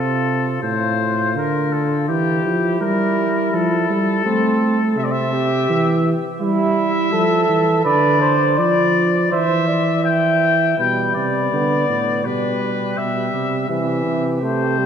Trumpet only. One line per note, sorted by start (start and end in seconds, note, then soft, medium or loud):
0.00 0.61 A4 medium
0.62 1.34 C5 medium
1.36 1.74 A#4 medium
1.72 2.08 A4 medium
2.08 2.79 G4 medium
2.81 3.55 A#4 medium
3.54 4.97 A4 medium
4.97 5.06 E5 medium
5.04 5.13 D5 medium
5.11 6.14 E5 medium
6.41 7.81 E5 medium
7.85 8.57 D5 medium
8.59 9.31 D5 medium
9.32 10.04 E5 medium
10.05 10.77 G5 medium
10.78 11.13 G5 medium
11.15 12.26 D5 medium
12.25 12.99 B4 medium
12.97 13.69 E5 medium
13.69 14.25 E5 medium
14.42 14.86 C5 medium